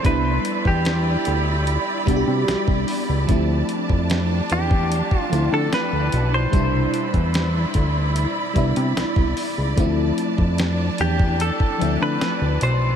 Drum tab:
HH |x-x-x-x-x-x-x-o-|x-x-x-x-x-x-x-x-|x-xxx-x-x-xxx-o-|x-x-x-x-x-x-x-x-|
SD |----o-------o---|----o-------o---|----o-------o---|----o-------o---|
BD |o--o------o--o--|o--o---o-o------|o--o--o---o--o--|o--o---o-o------|